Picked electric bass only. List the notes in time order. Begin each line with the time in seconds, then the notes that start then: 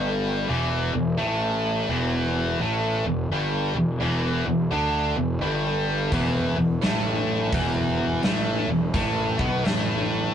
Already playing: G1
0.49 E1
0.94 E1
1.18 A1
1.89 E1
2.59 A1
3.05 E1
3.30 G1
3.75 E1
4.01 E1
4.46 E1
4.71 D2
5.17 E1
5.40 G1
6.12 E1
6.56 E1
6.83 A1
7.53 E1
8.23 A1
8.67 E1
8.94 A1
9.39 B1
9.65 A1